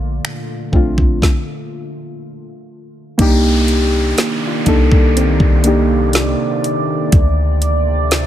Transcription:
Already playing: 808-style bass A#1, ambient pad A#2 D3 A3 F4
0.25 finger snap
0.72 808-style bass A#1, synth keys A3 C4 D4 F4, kick
0.98 808-style bass A#1, kick
1.22 kick, snare
3.18 808-style bass C2, ambient pad C3 D#3 A#3 D5, synth keys A#3 D4 D#4 G4, kick, closed hi-hat, downlifter
3.68 closed hi-hat
4.18 synth pluck A#3, snare, closed hi-hat
4.47 synth pluck F4
4.65 808-style bass C2, synth keys A#3 D4 D#4 A4, kick, closed hi-hat
4.91 808-style bass C2, kick
5.16 synth pluck C4, closed hi-hat
5.40 808-style bass C2, kick
5.64 synth keys A#3 D4 D#4 G4, closed hi-hat
6.13 snare, closed hi-hat
6.64 closed hi-hat
7.12 808-style bass D2, ambient pad F3 A3, kick, closed hi-hat
7.62 closed hi-hat
8.11 snare, closed hi-hat

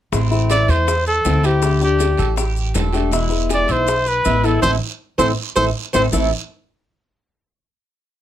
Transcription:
0.12 upright bass A1, steel-string acoustic guitar E3 A3 C4 E4, cuban tres C4, high bongo, long guiro, maracas
0.31 steel-string acoustic guitar A3 C4 E4, high bongo, maracas
0.50 cuban tres E4, trumpet D5, high bongo, short guiro, maracas
0.68 upright bass E2, cuban tres C5, trumpet C5, high bongo, short guiro, maracas
0.87 muted steel-string acoustic guitar stroke, high bongo, long guiro, maracas
1.06 cuban tres A4, trumpet A4, maracas
1.24 upright bass D2, steel-string acoustic guitar E3 A3 C4 E4, cuban tres C4, high bongo, low bongo, short guiro, maracas
1.43 steel-string acoustic guitar A3 C4 E4, cuban tres G4, trumpet G4, high bongo, short guiro, maracas
1.62 steel-string acoustic guitar D3 A3 D4 G4, high bongo, long guiro, maracas
1.81 steel-string acoustic guitar A3 D4 G4, trumpet G4, cuban tres D5, high bongo, maracas
1.99 high bongo, short guiro, maracas
2.18 upright bass A1, cuban tres A4, high bongo, short guiro, maracas
2.36 cuban tres G4, muted steel-string acoustic guitar stroke, high bongo, long guiro, maracas
2.56 maracas
2.74 upright bass E1, steel-string acoustic guitar D3 A3 D4 G4, cuban tres A4, high bongo, low bongo, short guiro, maracas
2.93 steel-string acoustic guitar A3 D4 G4, high bongo, short guiro, maracas
3.11 steel-string acoustic guitar B2 E3 G#3 B3 E4, cuban tres E4, high bongo, long guiro, maracas
3.29 steel-string acoustic guitar E3 G#3 B3 E4, high bongo, maracas
3.49 cuban tres G#4, trumpet D5, high bongo, short guiro, maracas
3.68 upright bass B1, trumpet C5, cuban tres E5, high bongo, short guiro, maracas
3.87 muted steel-string acoustic guitar stroke, high bongo, long guiro, maracas
4.06 cuban tres B4, trumpet B4, maracas
4.25 upright bass A1, steel-string acoustic guitar E3 G#3 B3 E4, cuban tres E4, high bongo, low bongo, short guiro, maracas
4.43 steel-string acoustic guitar E3 G#3 B3 E4, cuban tres E4, trumpet A4, high bongo, short guiro, maracas
4.62 upright bass A1, steel-string acoustic guitar E3 A3 C4, cuban tres E4 A4 C5, trumpet C5, low bongo, long guiro, maracas
5.18 upright bass A1, steel-string acoustic guitar E3 A3 C4, cuban tres E4 A4 C5, trumpet C5, low bongo, long guiro, maracas
5.56 upright bass A1, steel-string acoustic guitar E3 A3 C4, cuban tres E4 A4 C5, trumpet C5, low bongo, long guiro, maracas
5.93 upright bass A1, steel-string acoustic guitar E3 A3 C4, cuban tres E4 A4 C5, trumpet C5, low bongo, long guiro, maracas
6.11 upright bass A1, steel-string acoustic guitar A2 E3 A3 C4 E4, cuban tres A3 E4 A4, low bongo, long guiro, maracas

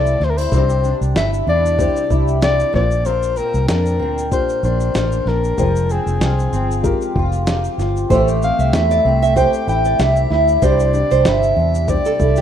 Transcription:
Already playing: fingered electric bass C2, steel-string acoustic guitar A2 C4 E4 A4, upright piano A3 E4 G4 C5, soprano saxophone D5
0.06 shaker
0.20 fingered electric bass D2, steel-string acoustic guitar D4, soprano saxophone C5, snare
0.30 soprano saxophone A#4
0.38 steel-string acoustic guitar E4, soprano saxophone C5, shaker
0.51 fingered electric bass C2, steel-string acoustic guitar C3 G4, upright piano G3 D4 E4 C5, kick, shaker
0.69 shaker
0.84 steel-string acoustic guitar D4, shaker
1.01 fingered electric bass C2, shaker
1.15 fingered electric bass G1, steel-string acoustic guitar E4, soprano saxophone E5, snare, shaker
1.33 shaker
1.47 fingered electric bass E2, steel-string acoustic guitar D4, soprano saxophone D5
1.66 shaker
1.78 upright piano G3 D4 E4 C5, steel-string acoustic guitar G4, kick, shaker
1.96 shaker
2.11 fingered electric bass C2, steel-string acoustic guitar E4, kick, shaker
2.28 shaker
2.42 steel-string acoustic guitar G4, soprano saxophone D5, snare, shaker
2.60 shaker
2.73 fingered electric bass A#1, steel-string acoustic guitar A#2, upright piano A#3 D4 F4 C5, soprano saxophone D5, kick, snare
2.91 shaker
3.05 steel-string acoustic guitar A#2 A#4, soprano saxophone C5, shaker
3.23 shaker
3.36 steel-string acoustic guitar C4, soprano saxophone A#4, shaker
3.54 fingered electric bass C2, shaker
3.68 fingered electric bass F2, steel-string acoustic guitar D4, soprano saxophone A#4, snare, shaker
3.86 shaker
3.99 fingered electric bass D2, steel-string acoustic guitar C4
4.18 shaker
4.31 upright piano A#3 D4 F4 G4, steel-string acoustic guitar A#4, soprano saxophone C5, kick, shaker
4.49 shaker
4.63 fingered electric bass A#1, steel-string acoustic guitar D4, soprano saxophone C5, shaker
4.80 shaker
4.95 fingered electric bass A1, steel-string acoustic guitar A#4, snare, shaker
5.12 shaker
5.26 fingered electric bass A#1, steel-string acoustic guitar D4, soprano saxophone A#4, snare
5.44 shaker
5.57 fingered electric bass F1, steel-string acoustic guitar F3, upright piano G#3 F4 C5 G5, kick, shaker
5.76 shaker
5.90 steel-string acoustic guitar C4, soprano saxophone G#4, shaker
6.06 fingered electric bass F1, shaker
6.20 fingered electric bass C2, steel-string acoustic guitar F4, snare, shaker
6.39 shaker
6.53 fingered electric bass G1, steel-string acoustic guitar C4, shaker
6.71 shaker
6.83 upright piano G#3 F4 G4 A#4, steel-string acoustic guitar G4, kick, shaker
7.01 shaker
7.15 fingered electric bass F1, steel-string acoustic guitar F4, kick
7.32 shaker
7.47 steel-string acoustic guitar G4, snare, shaker
7.64 shaker
7.78 fingered electric bass G1, steel-string acoustic guitar F4, snare, shaker
7.97 shaker
8.09 fingered electric bass A1, upright piano E3 A3 G4 C5, steel-string acoustic guitar A3 G4, nylon-string guitar C5, kick, shaker
8.28 shaker
8.42 steel-string acoustic guitar C4, soprano saxophone F5, shaker
8.59 fingered electric bass C2, nylon-string guitar E5, shaker
8.73 fingered electric bass E2, steel-string acoustic guitar E4, soprano saxophone E5, snare, shaker
8.91 nylon-string guitar D5, shaker
9.05 fingered electric bass C2, steel-string acoustic guitar C4
9.22 nylon-string guitar E5, shaker
9.36 upright piano A3 E4 G4 A4, steel-string acoustic guitar G4, nylon-string guitar C5, soprano saxophone G5, kick, shaker
9.54 shaker
9.68 fingered electric bass A1, steel-string acoustic guitar E4, soprano saxophone G5, shaker
9.85 nylon-string guitar D5, shaker
9.99 fingered electric bass C2, steel-string acoustic guitar G4, soprano saxophone E5, snare, shaker
10.16 shaker
10.30 fingered electric bass D2, steel-string acoustic guitar E4, soprano saxophone E5, snare
10.48 shaker
10.62 fingered electric bass C2, steel-string acoustic guitar C3 G4, upright piano G3 D4 E4 C5, nylon-string guitar C5, soprano saxophone D5, kick, shaker
10.80 shaker
10.93 steel-string acoustic guitar D4, shaker
11.11 fingered electric bass C2, nylon-string guitar C5, shaker
11.25 fingered electric bass G1, steel-string acoustic guitar E4, soprano saxophone E5, snare, shaker
11.43 shaker
11.56 fingered electric bass E2, steel-string acoustic guitar D4
11.75 shaker
11.87 upright piano G3 D4 E4 C5, steel-string acoustic guitar G4, soprano saxophone D5, kick, shaker
12.05 nylon-string guitar A4, shaker
12.20 fingered electric bass C2, steel-string acoustic guitar E4, kick, shaker
12.36 nylon-string guitar G4, shaker

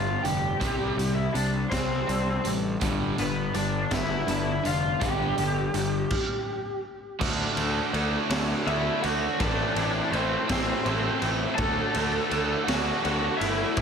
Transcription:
Already playing: picked electric bass G1, distorted electric guitar G2 D3, clean electric guitar G2 D3 G3 B3 D4, lead electric guitar F4 F5
0.23 picked electric bass F1, distorted electric guitar G2 D3, clean electric guitar G3, lead electric guitar G4 G5, closed hi-hat
0.60 picked electric bass C2, distorted electric guitar C3 G3 C4, clean electric guitar C3, kick, closed hi-hat
0.97 picked electric bass C2, distorted electric guitar C3 G3, clean electric guitar G3, closed hi-hat
1.15 lead electric guitar E4 E5
1.32 picked electric bass C2, distorted electric guitar C3 G3, clean electric guitar G3, lead electric guitar D4 D5, closed hi-hat
1.69 picked electric bass C2, distorted electric guitar C3 G3, lead electric guitar C4 C5, clean electric guitar C4, kick, snare, closed hi-hat
2.07 picked electric bass C2, distorted electric guitar C3 G3, clean electric guitar D4, closed hi-hat
2.44 picked electric bass A1, distorted electric guitar C3 G3, clean electric guitar G3, closed hi-hat
2.81 picked electric bass G1, distorted electric guitar G2 D3 G3, clean electric guitar G2, kick, closed hi-hat
3.18 picked electric bass G1, distorted electric guitar G2 D3, clean electric guitar D3, lead electric guitar B3 B4, closed hi-hat
3.54 picked electric bass G1, distorted electric guitar G2 D3, clean electric guitar G3, lead electric guitar D4 D5, closed hi-hat
3.91 picked electric bass G1, distorted electric guitar G2 D3, clean electric guitar B3, lead electric guitar E4 E5, kick, snare, closed hi-hat
4.27 picked electric bass G1, distorted electric guitar G2 D3, clean electric guitar D4, closed hi-hat
4.64 picked electric bass F1, distorted electric guitar G2 D3, clean electric guitar G3, lead electric guitar F4 F5, closed hi-hat
5.00 picked electric bass G1, distorted electric guitar G2 D3 G3, clean electric guitar G2, lead electric guitar G4 G5, kick, closed hi-hat
5.37 picked electric bass G1, distorted electric guitar G2 D3, clean electric guitar D3, closed hi-hat
5.74 picked electric bass G1, distorted electric guitar G2 D3, clean electric guitar G3, closed hi-hat
6.11 kick, crash
7.20 picked electric bass D2, distorted electric guitar D3 A3 D4 F#4 A4, kick, crash
7.56 picked electric bass D2, distorted electric guitar D4 F#4 A4, ride
7.92 picked electric bass D2, distorted electric guitar A3 D4 F#4 A4, ride
8.29 picked electric bass D2, overdriven electric guitar D3 A3, distorted electric guitar D4 F#4 A4, snare, ride
8.66 picked electric bass D2, distorted electric guitar A3 D4 F#4 A4, lead electric guitar E4 E5, ride
9.03 picked electric bass D2, lead electric guitar F#4 F#5, distorted electric guitar F#4 A4, ride
9.07 distorted electric guitar D4
9.40 picked electric bass A1, distorted electric guitar A2 E3 A3 C4 E4 A4, lead electric guitar D4 D5, kick, ride
9.76 picked electric bass A1, distorted electric guitar A3 C4 E4 A4, ride
10.12 picked electric bass A1, distorted electric guitar A3 C4 E4 A4, lead electric guitar C4 C5, ride
10.49 picked electric bass A1, overdriven electric guitar A2 E3, distorted electric guitar A3 C4 E4 A4, lead electric guitar C4 C5, kick, snare, ride
10.85 picked electric bass A1, distorted electric guitar A3 C4 E4 A4, ride
11.21 picked electric bass A1, distorted electric guitar A3 C4 E4 A4, ride
11.55 picked electric bass D2, distorted electric guitar D3, lead electric guitar A4 A5, kick, ride
11.59 distorted electric guitar A3 D4 F#4 A4
11.94 picked electric bass D2, distorted electric guitar D4 F#4 A4, ride
12.31 picked electric bass D2, distorted electric guitar A3 D4 F#4 A4, ride
12.64 picked electric bass D2, lead electric guitar F#4 F#5, distorted electric guitar A4
12.68 overdriven electric guitar D3 A3, distorted electric guitar D4 F#4, snare, ride
13.04 picked electric bass D2, distorted electric guitar A3 D4 F#4 A4, ride
13.37 picked electric bass G1, lead electric guitar E4 E5, distorted electric guitar A4
13.41 distorted electric guitar D4 F#4, ride
13.76 picked electric bass A1, distorted electric guitar A2 E3 A3 C4, overdriven electric guitar A4, kick, ride

